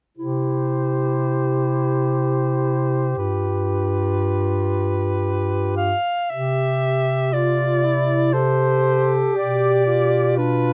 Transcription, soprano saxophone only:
0.18 3.14 C5 soft
3.18 5.74 B4 soft
5.77 6.31 F5 soft
6.30 7.35 E5 soft
7.33 8.35 D5 soft
8.33 9.18 C5 medium
9.35 10.35 D5 soft
10.38 10.73 B4 medium

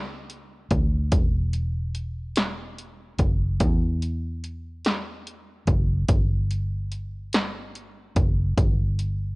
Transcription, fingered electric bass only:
0.00 0.67 C#2 loud
0.71 1.09 D2 medium
1.12 3.15 E1 loud
3.19 3.62 F#1 medium
3.60 5.63 E2 loud
5.67 6.06 F#1 loud
6.09 8.12 G1 loud
8.16 8.55 F#1 loud
8.57 9.36 G1 loud

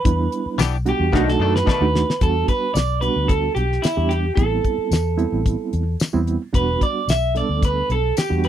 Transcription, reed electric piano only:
0.05 0.59 G3 medium
0.05 0.59 B3 medium
0.05 0.60 D4 medium
0.05 0.60 E4 medium
0.85 1.13 G3 medium
0.85 1.13 B3 medium
0.85 1.11 D4 medium
0.85 1.11 F#4 medium
1.12 1.67 A3 medium
1.12 1.67 D4 medium
1.12 1.67 D#4 medium
1.12 1.67 F#4 loud
1.81 2.08 A3 medium
1.81 2.08 D4 medium
1.81 2.08 D#4 medium
1.81 2.09 F#4 medium
2.21 2.76 G3 medium
2.21 2.76 B3 medium
2.21 2.76 D4 medium
2.21 2.76 F#4 medium
3.02 3.66 G3 medium
3.02 3.66 B3 medium
3.02 3.67 D4 medium
3.02 3.67 F#4 medium
3.97 4.24 G3 medium
3.97 4.25 B3 medium
3.97 4.25 D4 medium
3.97 4.24 G4 medium
4.36 4.92 G3 medium
4.36 4.92 B3 medium
4.36 4.92 C4 medium
4.36 4.92 E4 medium
5.17 5.82 G3 medium
5.17 5.82 B3 medium
5.17 5.82 C4 medium
5.17 5.82 E4 medium
6.13 6.41 G3 medium
6.13 6.41 B3 medium
6.13 6.41 C4 medium
6.13 6.41 E4 loud
6.53 7.08 G3 medium
6.53 7.08 B3 medium
6.53 7.08 D4 medium
6.53 7.08 F#4 medium
7.35 7.99 G3 medium
7.35 7.99 B3 medium
7.35 7.99 D4 medium
7.35 7.99 A4 medium
8.30 8.48 G3 medium
8.30 8.48 B3 medium
8.30 8.48 D4 medium
8.30 8.48 F#4 medium

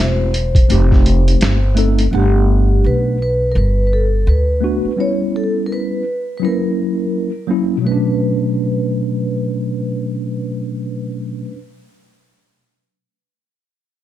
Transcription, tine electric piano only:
0.00 0.31 A3 medium
0.00 0.31 C4 medium
0.00 0.32 E4 medium
0.00 0.32 F#4 medium
0.68 1.58 A3 medium
0.68 1.58 C4 medium
0.68 1.59 D#4 medium
0.68 1.60 G4 medium
1.75 2.04 A3 medium
1.75 2.05 C4 medium
1.75 2.05 D#4 medium
1.75 2.06 A4 medium
2.11 3.17 A3 medium
2.11 3.17 B3 medium
2.11 3.18 D4 medium
2.11 3.18 F#5 medium
4.61 4.90 A3 medium
4.61 4.90 B3 medium
4.61 4.91 D4 medium
4.61 4.92 F#4 medium
4.96 6.02 G3 medium
4.96 6.03 B3 medium
4.96 6.03 C#4 medium
4.96 6.04 E4 medium
6.40 7.29 F#3 medium
6.40 6.49 G3 soft
6.40 7.30 C#4 medium
6.40 7.31 E4 medium
6.47 7.33 A#3 medium
7.47 7.76 F#3 medium
7.47 7.76 A#3 medium
7.47 7.77 C#4 medium
7.47 7.78 E4 medium
7.77 11.44 B2 medium
7.77 11.48 F#3 medium
7.85 11.51 A3 medium
7.85 11.55 C#4 medium
7.92 11.58 D4 medium

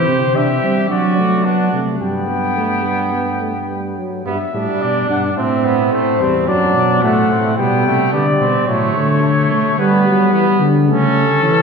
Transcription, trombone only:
0.00 0.31 C4 medium
0.37 0.48 D4 medium
0.63 0.89 C4 medium
0.89 1.19 D4 medium
1.17 1.47 A3 medium
1.45 1.72 B3 medium
1.72 1.99 A3 medium
2.00 2.30 G3 medium
2.28 2.56 B3 medium
2.57 2.86 A3 medium
2.84 3.14 G3 medium
3.13 3.40 B3 medium
3.41 3.54 A3 medium
3.70 3.99 G3 medium
3.98 4.24 F#3 medium
4.25 4.38 G3 medium
4.54 5.08 G3 medium
5.09 5.22 D4 medium
5.37 6.19 C4 loud
6.21 6.47 G3 medium
6.48 7.02 F#3 medium
7.03 7.57 A3 medium
7.58 8.12 G3 loud
8.14 8.70 G3 medium
8.68 8.98 F#3 medium
8.96 9.78 A3 medium
9.79 10.05 G3 medium
10.07 10.33 F#3 medium
10.34 10.46 E3 medium
10.62 10.90 G3 medium
10.88 11.24 A3 medium
11.43 11.62 E3 medium

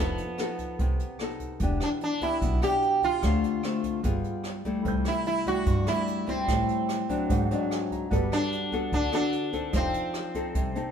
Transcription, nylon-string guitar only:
0.00 0.78 F3 soft
0.00 0.25 B3 soft
0.00 0.25 D#4 soft
0.00 0.25 A4 medium
0.39 0.94 B3 medium
0.39 0.94 D#4 soft
0.39 0.94 A4 medium
0.80 1.59 C3 medium
1.21 1.60 B3 soft
1.21 1.60 D#4 soft
1.21 1.60 A4 soft
1.62 2.41 E3 soft
1.62 2.02 B3 soft
1.62 2.02 D4 soft
1.62 2.02 G4 soft
2.21 2.59 B3 medium
2.21 2.59 D4 medium
2.21 2.59 G4 medium
2.42 3.21 B2 medium
2.63 3.22 B3 medium
2.63 3.22 D4 medium
2.63 3.22 G4 medium
3.23 4.03 D3 soft
3.23 3.61 A3 soft
3.23 3.61 C4 soft
3.23 3.61 F4 medium
3.64 4.01 A3 medium
3.64 4.02 C4 medium
3.64 4.02 F4 medium
4.04 4.64 G3 medium
4.04 4.45 B3 medium
4.04 4.45 F4 medium
4.04 4.45 G#4 medium
4.65 5.43 G3 medium
4.65 5.44 A3 medium
4.65 5.44 E4 medium
4.85 5.64 C3 soft
5.46 5.84 G3 medium
5.46 5.84 A3 soft
5.46 5.84 E4 medium
5.66 6.45 G2 medium
5.87 6.24 G3 medium
5.87 6.25 A3 medium
5.87 6.25 E4 medium
6.27 7.05 G3 soft
6.27 7.06 C4 medium
6.27 7.06 E4 medium
6.48 7.27 A2 soft
7.09 7.47 F#3 medium
7.09 7.47 C4 medium
7.09 7.47 D4 medium
7.31 8.10 G#2 medium
7.51 8.08 F#3 medium
7.51 8.08 C4 medium
7.51 8.08 D4 medium
8.11 8.90 G3 soft
8.11 8.69 B3 soft
8.11 8.69 F#4 soft
8.11 8.69 A4 medium
8.72 9.09 B3 medium
8.72 9.10 F#4 medium
8.72 9.10 A4 medium
8.93 9.72 D3 medium
9.12 9.50 B3 medium
9.12 9.50 F#4 medium
9.12 9.50 A4 medium
9.53 10.31 C4 medium
9.53 10.31 D#4 medium
9.53 10.32 A4 medium
9.73 10.53 F3 soft
10.35 10.72 C4 medium
10.35 10.72 D#4 medium
10.35 10.72 A4 medium
10.56 10.91 C3 medium
10.75 10.91 C4 soft
10.75 10.91 D#4 medium
10.75 10.91 A4 medium

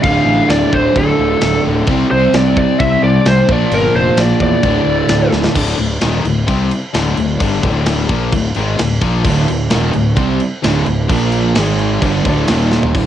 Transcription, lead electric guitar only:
0.04 0.50 F5 loud
0.50 0.74 D5 loud
0.74 0.97 C5 loud
0.98 1.62 A4 medium
2.11 2.35 C5 loud
2.35 2.56 D5 loud
2.58 2.79 D5 loud
2.80 3.03 E5 loud
3.04 3.25 D5 medium
3.28 3.48 C5 medium
3.52 3.72 D5 medium
3.74 3.96 A#4 medium
3.96 4.17 C5 loud
4.20 4.41 D5 loud
4.43 5.30 D5 loud

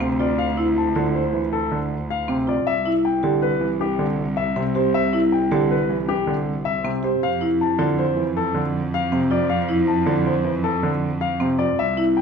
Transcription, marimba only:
0.00 0.25 C4 medium
0.20 0.44 F4 medium
0.57 0.82 E4 medium
0.95 1.20 F4 medium
2.28 2.53 C4 medium
2.47 2.72 F4 medium
2.86 3.10 E4 medium
3.23 3.48 G4 medium
4.56 4.81 C4 medium
4.75 5.00 G4 medium
5.13 5.38 E4 medium
5.51 5.76 G4 medium
6.85 7.09 C4 medium
7.03 7.28 G4 medium
7.41 7.66 E4 medium
7.79 8.04 F4 medium
9.12 9.37 C4 medium
9.31 9.56 F4 medium
9.69 9.94 E4 medium
10.07 10.32 F4 medium
11.40 11.65 C4 medium
11.59 11.84 F4 medium
11.97 12.22 E4 medium

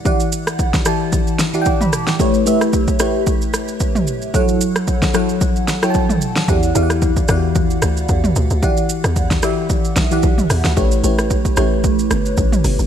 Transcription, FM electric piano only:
0.00 0.05 E3 medium
0.00 0.05 E4 medium
0.00 0.06 G4 medium
0.00 0.06 D5 medium
0.00 0.06 F#5 medium
0.05 0.71 E3 medium
0.05 0.71 E4 medium
0.05 0.71 G4 medium
0.05 0.71 D5 medium
0.05 0.71 F#5 medium
0.86 1.39 E3 medium
0.86 1.39 E4 medium
0.86 1.40 G4 medium
0.86 1.40 D5 medium
0.86 1.40 A5 medium
1.54 2.07 E3 medium
1.54 2.08 E4 medium
1.54 2.08 G4 medium
1.54 2.08 D5 medium
1.54 1.60 F#5 medium
1.62 1.70 G5 medium
1.66 1.80 D6 medium
1.81 2.07 B5 medium
2.08 2.33 G5 medium
2.19 2.42 A3 medium
2.19 2.42 E4 medium
2.19 2.42 G4 medium
2.19 2.42 B4 medium
2.19 2.42 C#5 medium
2.46 2.90 A3 medium
2.46 2.90 E4 medium
2.46 2.91 G4 medium
2.46 2.91 B4 medium
2.46 2.91 E5 medium
3.00 3.86 A3 medium
3.00 3.86 E4 medium
3.00 3.87 G4 medium
3.00 3.87 B4 medium
3.00 3.87 C#5 medium
4.34 4.99 F#3 medium
4.34 4.99 E4 medium
4.34 5.00 A4 medium
4.34 5.00 C#5 medium
4.34 5.00 F#5 loud
5.14 5.68 F#3 medium
5.14 5.68 E4 medium
5.14 5.68 A4 medium
5.14 5.68 C#5 medium
5.14 5.69 F#5 medium
5.82 6.36 F#3 medium
5.82 6.36 E4 medium
5.82 6.36 A4 medium
5.82 6.37 C#5 medium
5.82 5.89 G5 medium
5.90 6.40 A5 medium
6.48 6.70 E3 medium
6.48 6.70 E4 medium
6.48 6.71 G4 medium
6.48 6.71 D5 medium
6.48 6.71 F#5 medium
6.75 7.19 E3 medium
6.75 7.19 E4 medium
6.75 7.19 G4 medium
6.75 7.19 D5 medium
6.75 6.83 F5 medium
6.83 7.23 F#5 medium
7.29 8.15 E3 medium
7.29 8.15 E4 medium
7.29 7.36 F#4 medium
7.29 8.15 D5 medium
7.29 8.16 F#5 medium
7.36 8.19 G4 medium
8.62 9.28 E3 medium
8.62 9.28 E4 medium
8.62 9.28 G4 medium
8.62 9.28 D5 medium
8.62 9.29 F#5 medium
9.43 9.96 E3 medium
9.43 9.97 E4 medium
9.43 9.97 G4 medium
9.43 9.97 D5 medium
9.43 9.97 E5 medium
10.11 10.65 E3 medium
10.11 10.65 E4 medium
10.11 10.65 G4 medium
10.11 10.65 D5 medium
10.11 10.66 F#5 loud
10.77 10.99 A3 medium
10.77 10.99 E4 medium
10.77 10.99 G4 medium
10.77 10.99 B4 medium
10.77 11.00 C#5 medium
11.03 11.48 A3 medium
11.03 11.48 E4 medium
11.03 11.48 G4 medium
11.03 11.48 B4 medium
11.03 11.48 C#5 medium
11.57 12.43 A3 medium
11.57 12.43 E4 medium
11.57 12.44 G4 medium
11.57 12.44 B4 medium
11.57 12.44 C#5 medium

